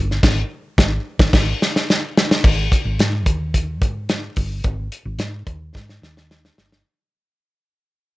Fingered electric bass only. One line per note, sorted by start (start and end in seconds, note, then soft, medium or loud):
0.00 0.18 G1 loud
0.23 0.42 G#1 loud
0.79 0.97 G#1 loud
1.20 1.31 G#1 loud
1.33 1.52 G#1 loud
2.44 2.67 G#1 loud
2.85 2.96 G#1 medium
2.99 3.26 G#2 loud
3.26 3.82 D#2 medium
3.82 4.27 G#2 medium
4.37 4.60 G1 loud
4.65 4.87 G#1 loud
5.05 5.17 G#1 medium
5.18 5.42 G#2 loud
5.47 5.70 D#2 medium
5.75 5.98 G#2 loud
6.02 6.48 D#2 medium
6.58 6.81 G1 medium